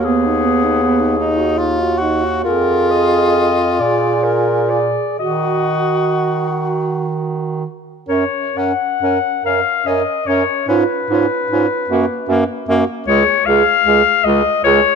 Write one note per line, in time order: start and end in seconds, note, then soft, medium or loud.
0.00 2.40 D#2 soft
0.04 1.17 B3 medium
0.04 0.27 B3 soft
0.04 1.98 G#4 medium
0.26 0.46 D#4 soft
0.45 0.65 B3 soft
0.64 0.81 D#4 soft
0.82 1.01 B3 soft
1.00 1.18 D#4 soft
1.19 1.40 D#4 soft
1.19 1.60 D#4 medium
1.38 1.59 F#4 soft
1.58 1.81 D#4 soft
1.58 2.00 F4 medium
1.80 2.00 F#4 soft
1.98 2.25 D#4 soft
1.98 2.43 F#4 medium
2.24 2.45 F#4 soft
2.44 3.82 F2 medium
2.44 4.81 F4 medium
2.44 3.65 G#4 medium
2.44 2.92 A#4 medium
2.91 3.82 D#5 medium
3.80 5.03 A#2 soft
3.80 5.17 G#4 soft
3.80 4.25 D5 medium
4.24 4.71 A#4 medium
4.70 5.18 D5 medium
5.19 7.64 D#3 soft
5.19 7.25 F#4 soft
5.19 7.64 F#4 soft
5.19 6.55 D#5 medium
8.08 8.25 F#2 soft
8.08 8.25 C#4 soft
8.08 8.24 A#4 soft
8.08 8.59 C#5 medium
8.56 8.73 F#2 soft
8.56 8.73 C#4 soft
8.56 8.72 A#4 soft
8.56 9.45 F#5 medium
9.02 9.18 F#2 soft
9.02 9.18 C#4 soft
9.02 9.19 A#4 soft
9.44 9.61 F#2 soft
9.44 9.60 C#4 soft
9.44 9.60 A#4 soft
9.44 9.88 F5 medium
9.86 10.02 F#2 soft
9.86 10.02 C#4 soft
9.86 10.03 A#4 soft
9.86 10.29 D#5 medium
10.27 10.43 F#2 soft
10.27 10.43 C#4 soft
10.27 10.45 A#4 soft
10.27 10.68 C#5 medium
10.68 10.84 G#2 medium
10.68 10.84 C#4 soft
10.68 10.86 F4 soft
10.68 12.64 B4 medium
11.10 11.26 G#2 soft
11.10 11.26 C#4 soft
11.10 11.26 F4 soft
11.50 11.66 G#2 soft
11.50 11.67 C#4 soft
11.50 11.68 F4 soft
11.89 12.05 F#2 medium
11.89 12.06 A#3 soft
11.89 12.07 F#4 soft
12.28 12.44 F#2 medium
12.28 12.45 A#3 soft
12.28 12.44 F#4 soft
12.68 12.84 F#2 medium
12.68 12.85 A#3 medium
12.68 12.86 F#4 soft
13.07 13.23 C#2 medium
13.07 13.24 G#3 medium
13.07 13.25 G#4 medium
13.07 13.47 C#5 medium
13.46 13.62 C#2 medium
13.46 13.63 G#3 medium
13.46 13.65 G#4 medium
13.46 14.26 F5 medium
13.86 14.02 C#2 medium
13.86 14.02 G#3 medium
13.86 14.03 G#4 medium
14.24 14.42 C#2 medium
14.24 14.41 G#3 medium
14.24 14.42 G#4 medium
14.24 14.63 D#5 medium
14.64 14.80 C#2 medium
14.64 14.80 G#3 medium
14.64 14.82 G#4 medium
14.64 14.95 C#5 medium